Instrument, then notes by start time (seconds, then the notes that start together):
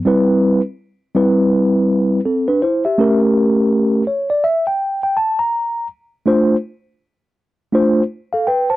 tine electric piano
0.05 G3 C4 E4 B4
1.15 G3 C4 E4 B4
2.25 C4 A4
2.48 D4 B4
2.62 E4 C5
2.85 G4 E5
2.98 A3 C#4 G4 A#4
4.07 C#5
4.30 D5
4.44 E5
4.67 G5
5.03 G5
5.17 A5
5.39 A#5
6.26 A3 D4 F4 C5
7.72 A3 D4 F4 C5
8.33 A4 F5
8.47 B4 G5
8.70 C5 A5